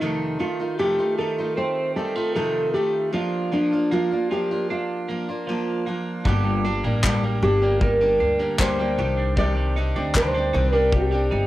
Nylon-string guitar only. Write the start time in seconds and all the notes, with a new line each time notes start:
Already playing: D#4
0.40 F4
0.79 G4
1.19 A4
1.58 C5
1.96 A4
2.36 A4
2.74 G4
3.14 F4
3.53 D4
3.93 F4
4.32 G4
4.71 F4
7.43 G4
7.82 A#4
8.60 C5
9.38 D5
10.16 C5
10.74 A#4
10.96 G4